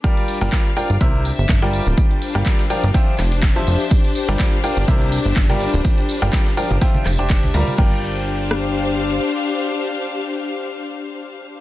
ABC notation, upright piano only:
X:1
M:4/4
L:1/16
Q:"Swing 16ths" 1/4=124
K:Gdor
V:1 name="Upright piano"
[G,FBdg]3 [G,FBdg]2 z [FBdg] z [C,EBce]2 z3 [G,FBdg]3- | [G,FBdg]3 [G,FBdg]2 z [F,FBdg] z [F,Fceg]2 z3 [F,Fcea]3 | z3 [G,FBdg]2 z [FBdg] z [C,EBce]2 z3 [G,FBdg]3- | [G,FBdg]3 [G,FBdg]2 z [F,FBdg] z [F,Fceg]2 z [DGcdg]3 [G,FBdb]2 |
[FBdg]16- | [FBdg]16 |]